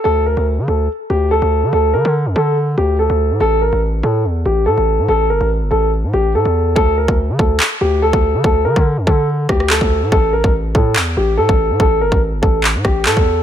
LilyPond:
<<
  \new Staff \with { instrumentName = "Grand piano" } { \time 4/4 \key a \phrygian \tempo 4 = 143 a'8 bes'8 r8 a'8 r8 g'8 a'4 | a'8 bes'8 r8 a'8 r8 g'8 a'4 | a'8 bes'8 r8 a'8 r8 g'8 a'4 | a'8 bes'8 r8 a'8 r8 g'8 a'4 |
a'8 bes'8 r8 a'8 r8 g'8 a'4 | a'8 bes'8 r8 a'8 r8 g'8 a'4 | a'8 bes'8 r8 a'8 r8 g'8 a'4 | a'8 bes'8 r8 a'8 r8 g'8 a'4 | }
  \new Staff \with { instrumentName = "808-style bass" } { \clef bass \time 4/4 \key a \phrygian d,8. d,8 d16 d,8 r8 d,8. d,8 d16 | d,8 d16 d8 f,16 d4 d,8. d,8 a,16 | a,,8. a,,8. a,8 e,8 a,,8 a,16 a,,8 a,16 | a,,8 g,,16 a,,8 g,,16 a,,8. a,16 a,,8 a,16 e,8. |
d,8. d,8 d16 d,8 r8 d,8. d,8 d16 | d,8 d16 d8 f,16 d4 d,8. d,8 a,16 | a,,8. a,,8. a,8 e,8 a,,8 a,16 a,,8 a,16 | a,,8 g,,16 a,,8 g,,16 a,,8. a,16 a,,8 a,16 e,8. | }
  \new DrumStaff \with { instrumentName = "Drums" } \drummode { \time 4/4 r4 r4 r4 r4 | r4 r4 r4 r4 | r4 r4 r4 r4 | r4 r4 r4 r4 |
bd8. bd16 r8 bd8 hc4 r16 bd8. | bd8. bd16 r8 bd8 r8 <bd ss>16 ss16 hc16 bd8. | bd8. bd16 r8 bd8 hc4 r16 bd8. | bd8. bd16 r8 bd8 hc8 <bd ss>8 hc16 bd8. | }
>>